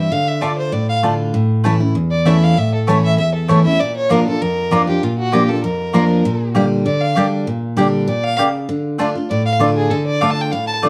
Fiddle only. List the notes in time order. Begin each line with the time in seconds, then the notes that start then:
Already playing: E5
0.12 F5
0.28 E5
0.42 D5
0.58 C5
0.73 D5
0.89 F5
2.11 D5
2.27 E5
2.43 F5
2.58 E5
2.74 A4
2.89 C#5
3.04 E5
3.18 E5
3.34 A4
3.49 C#5
3.64 E5
3.80 D5
3.96 C#5
4.11 A#4
4.27 A4
4.41 A#4
4.88 G4
5.03 F4
5.19 F#4
5.33 G4
5.49 A4
5.63 A#4
6.86 D5
7.01 F5
8.08 D5
8.24 F5
9.30 D5
9.45 F5
9.76 G#4
9.90 A4
10.07 D5
10.21 F5
10.31 A5
10.41 G5
10.51 F5
10.67 A5